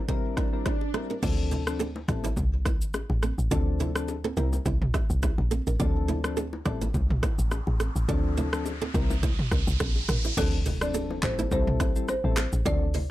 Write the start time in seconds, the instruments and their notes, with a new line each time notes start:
Already playing: swell
0.08 synth keys G3 C4 E4 A#4, nylon-string guitar E4 C5, kick, low conga
0.37 nylon-string guitar G4 E5, kick, cross-stick, low bongo
0.53 synth keys G3 C4 E4 A#4
0.66 nylon-string guitar E4 C5, kick, cross-stick, high bongo
0.81 high bongo
0.94 synth keys G3 C4 E4 A#4, nylon-string guitar C4 A4, cross-stick
1.10 nylon-string guitar D4 A#4, high bongo
1.22 log drum bass D2, synth keys F3 C4 D4 A4, nylon-string guitar F4 D5, kick, crash, low conga, shaker
1.51 nylon-string guitar E4 C5, low conga, shaker
1.67 synth keys F3 C4 D4 A4, cross-stick, shaker
1.79 nylon-string guitar C4 A4, high bongo, shaker
1.96 low bongo
2.08 log drum bass A1, synth keys G3 C4 E4 A4, nylon-string guitar G4 D5, kick, cross-stick, low bongo, shaker
2.24 nylon-string guitar E4 C5, low bongo, shaker
2.36 log drum bass C2, kick, low conga, shaker
2.65 nylon-string guitar E4 C5, kick, cross-stick, low bongo, shaker
2.81 log drum bass A1, shaker
2.94 cross-stick, high bongo, shaker
3.10 log drum bass A1, high bongo
3.23 nylon-string guitar C4 A4, cross-stick, shaker
3.38 log drum bass A1, shaker
3.51 log drum bass D2, synth keys F3 C4 D4 A4, nylon-string guitar F4 D5, kick, low conga, shaker
3.80 nylon-string guitar E4 C5, low conga, shaker
3.95 synth keys F3 C4 D4 A4, cross-stick, shaker
4.08 high bongo, shaker
4.24 nylon-string guitar C4 A4, low bongo
4.37 log drum bass C2, synth keys G3 C4 E4 A#4, nylon-string guitar E4 A#4, low bongo, shaker
4.53 low bongo, shaker
4.65 log drum bass C2, nylon-string guitar E4 C5, kick, low conga, shaker
4.82 mid tom
4.94 nylon-string guitar G4 E5, kick, cross-stick, low bongo, shaker
5.10 log drum bass C2, shaker
5.23 nylon-string guitar E4 C5, kick, cross-stick, high bongo, shaker
5.38 log drum bass A#1, high bongo
5.51 nylon-string guitar C4 A4, shaker
5.67 log drum bass A1, nylon-string guitar D4 A#4, shaker
5.79 log drum bass D2, synth keys F3 C4 D4 A4, nylon-string guitar F4 D5, kick, riser, low conga, shaker
6.08 nylon-string guitar E4 C5, low conga, shaker
6.24 synth keys F3 C4 D4 A4, cross-stick, shaker
6.37 nylon-string guitar C4 A4, high bongo, shaker
6.53 low bongo
6.65 log drum bass A1, synth keys G3 C4 E4 A4, nylon-string guitar G4 D5, kick, cross-stick, low bongo, shaker
6.81 nylon-string guitar E4 C5, low bongo, shaker
6.94 log drum bass C2, kick, low conga, shaker
7.10 mid tom
7.23 nylon-string guitar E4 C5, kick, cross-stick, low bongo, shaker
7.39 log drum bass A1, shaker
7.51 cross-stick, high bongo, shaker
7.67 log drum bass A1, high bongo
7.80 nylon-string guitar C4 A4, cross-stick, shaker
7.96 log drum bass A1, shaker
8.08 log drum bass D2, synth keys F3 C4 D4 A4, nylon-string guitar F4 D5, kick, low conga, shaker
8.37 nylon-string guitar E4 C5, low conga, shaker
8.53 synth keys F3 C4 D4 A4, cross-stick, shaker
8.66 high bongo, shaker
8.82 nylon-string guitar C4 A4, low bongo
8.94 log drum bass C2, synth keys G3 C4 E4 A#4, nylon-string guitar E4 A#4, kick, low bongo, shaker
9.10 low bongo, shaker
9.23 nylon-string guitar E4 C5, kick, low conga, shaker
9.39 mid tom
9.51 log drum bass C2, nylon-string guitar D4 A#4, kick, cross-stick, low bongo, shaker
9.67 log drum bass C2, shaker
9.80 log drum bass A#1, nylon-string guitar C4 A4, kick, cross-stick, high bongo, shaker
9.96 high bongo
10.09 log drum bass A1, nylon-string guitar D4 A#4, cross-stick, mid tom, shaker
10.24 nylon-string guitar E4 C5, shaker
10.37 log drum bass D2, synth keys F3 C4 D4 A4, nylon-string guitar F4 D5, marimba A4, kick, crash, impact, low conga, shaker
10.66 nylon-string guitar E4 C5, open hi-hat, low conga, shaker
10.81 synth keys F3 C4 D4 A4, marimba D5, cross-stick, shaker
10.94 nylon-string guitar C4 A4, high bongo, shaker
11.10 low bongo
11.23 log drum bass A1, synth keys G3 C4 E4 A4, nylon-string guitar G4 D5, marimba C5, kick, cross-stick, clap, low bongo, shaker
11.39 nylon-string guitar E4 C5, low bongo, shaker
11.51 log drum bass C2, synth keys G3 C4 E4 A4, marimba C5, kick, low conga, shaker
11.67 mid tom
11.80 nylon-string guitar E4 C5, kick, cross-stick, low bongo, shaker
11.96 log drum bass A1, synth keys G3 C4 E4 A4, shaker
12.08 marimba C5, cross-stick, high bongo, shaker
12.24 log drum bass A1, synth keys G3 C4 E4 A4
12.37 nylon-string guitar C4 A4, cross-stick, clap, shaker
12.53 log drum bass A1, high bongo, shaker
12.66 log drum bass D2, synth keys F3 C4 D4 A4, nylon-string guitar F4 D5, marimba D5, kick, low conga, shaker
12.94 nylon-string guitar E4 C5, open hi-hat, low conga, shaker